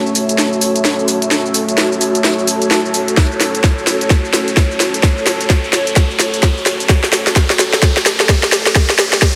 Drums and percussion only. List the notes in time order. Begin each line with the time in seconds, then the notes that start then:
0.06 shaker
0.15 open hi-hat, shaker
0.29 closed hi-hat, shaker
0.38 snare, closed hi-hat, shaker
0.53 shaker
0.61 open hi-hat, shaker
0.76 closed hi-hat, shaker
0.85 snare, closed hi-hat, shaker
0.99 shaker
1.08 open hi-hat, shaker
1.22 closed hi-hat, shaker
1.31 snare, closed hi-hat, shaker
1.46 shaker
1.54 open hi-hat, shaker
1.69 closed hi-hat, shaker
1.78 snare, closed hi-hat, shaker
1.92 shaker
2.01 open hi-hat, shaker
2.15 closed hi-hat, shaker
2.24 snare, closed hi-hat, shaker
2.39 shaker
2.47 open hi-hat, shaker
2.62 closed hi-hat, shaker
2.71 snare, closed hi-hat, shaker
2.85 shaker
2.94 open hi-hat, shaker
3.08 closed hi-hat, shaker
3.17 kick, snare, closed hi-hat, shaker
3.32 shaker
3.41 snare, open hi-hat, shaker
3.55 closed hi-hat, shaker
3.64 kick, snare, closed hi-hat, shaker
3.78 shaker
3.87 snare, open hi-hat, shaker
4.01 closed hi-hat, shaker
4.10 kick, snare, closed hi-hat, shaker
4.25 shaker
4.33 snare, open hi-hat, shaker
4.48 closed hi-hat, shaker
4.57 kick, snare, closed hi-hat, shaker
4.71 shaker
4.80 snare, open hi-hat, shaker
4.94 closed hi-hat, shaker
5.03 kick, snare, closed hi-hat, shaker
5.18 shaker
5.27 snare, open hi-hat, shaker
5.41 closed hi-hat, shaker
5.50 kick, snare, closed hi-hat, shaker
5.64 shaker
5.73 snare, open hi-hat, shaker
5.87 closed hi-hat, shaker
5.96 kick, snare, closed hi-hat, shaker
6.11 shaker
6.19 snare, open hi-hat, shaker
6.34 closed hi-hat, shaker
6.43 kick, snare, closed hi-hat, shaker
6.57 shaker
6.66 snare, open hi-hat, shaker
6.80 closed hi-hat, shaker
6.89 kick, snare, closed hi-hat, shaker
7.04 snare, shaker
7.13 snare, open hi-hat, shaker
7.27 snare, closed hi-hat, shaker
7.36 kick, snare, closed hi-hat, shaker
7.50 snare, shaker
7.59 snare, open hi-hat, shaker
7.73 snare, closed hi-hat, shaker
7.82 kick, snare, closed hi-hat, shaker
7.97 snare, shaker
8.06 snare, open hi-hat, shaker
8.20 snare, closed hi-hat, shaker
8.29 kick, snare, closed hi-hat, shaker
8.43 snare, shaker
8.52 snare, open hi-hat, shaker
8.66 snare, closed hi-hat, shaker
8.75 kick, snare, closed hi-hat, shaker
8.90 snare, shaker
8.99 snare, open hi-hat, shaker
9.13 snare, closed hi-hat, shaker
9.22 kick, snare, closed hi-hat, shaker